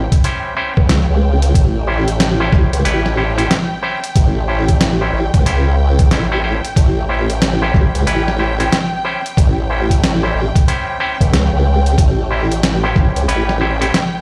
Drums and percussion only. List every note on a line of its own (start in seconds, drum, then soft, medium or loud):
0.12 kick loud
0.12 closed hi-hat medium
0.24 closed hi-hat medium
0.77 kick loud
0.89 snare loud
0.89 closed hi-hat medium
1.42 closed hi-hat medium
1.54 kick loud
1.54 closed hi-hat medium
2.08 closed hi-hat medium
2.20 snare loud
2.20 closed hi-hat medium
2.52 kick loud
2.52 snare soft
2.73 closed hi-hat medium
2.85 closed hi-hat medium
3.06 snare soft
3.39 closed hi-hat medium
3.51 snare loud
3.51 closed hi-hat medium
4.04 closed hi-hat medium
4.16 kick loud
4.16 closed hi-hat medium
4.68 kick medium
4.68 closed hi-hat medium
4.81 snare loud
4.81 closed hi-hat medium
5.34 kick loud
5.34 closed hi-hat medium
5.46 closed hi-hat medium
5.99 kick loud
5.99 closed hi-hat medium
6.11 snare loud
6.11 closed hi-hat medium
6.65 closed hi-hat medium
6.76 kick loud
6.76 closed hi-hat medium
7.30 closed hi-hat medium
7.42 snare loud
7.42 closed hi-hat medium
7.74 kick loud
7.74 snare soft
7.95 closed hi-hat medium
8.07 closed hi-hat medium
8.28 snare soft
8.60 closed hi-hat medium
8.72 snare loud
8.72 closed hi-hat medium
9.26 closed hi-hat soft
9.37 kick loud
9.37 closed hi-hat medium
9.90 kick medium
9.90 closed hi-hat medium
10.04 snare loud
10.04 closed hi-hat medium
10.56 kick loud
10.56 closed hi-hat medium
10.68 closed hi-hat medium
11.21 kick loud
11.21 closed hi-hat soft
11.34 snare loud
11.34 closed hi-hat medium
11.86 closed hi-hat soft
11.98 kick loud
11.98 closed hi-hat medium
12.52 closed hi-hat medium
12.63 snare loud
12.63 closed hi-hat medium
12.96 kick loud
12.96 snare soft
13.16 closed hi-hat medium
13.29 closed hi-hat medium
13.49 snare medium
13.82 closed hi-hat medium
13.94 snare loud
13.94 closed hi-hat medium